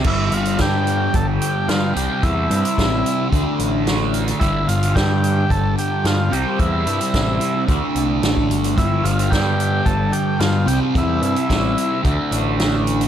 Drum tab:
CC |x---------------|----------------|----------------|----------------|
HH |--xxx-x-x-x-x-x-|x-xxx-x-x-x-x-xx|x-xxx-x-x-x-x-x-|x-xxx-x-x-x-x-xx|
SD |----o-------o---|----o-------o---|----o-------o---|----o-------o---|
BD |o---o---o-------|o---o---o-------|o---o---o-------|o---o---o----o--|

CC |----------------|----------------|
HH |x-xxx-x-x-x-x-x-|x-xxx-x-x-x-x-xx|
SD |----o-------o---|----o-------o---|
BD |o---o---o-------|o---o---o-------|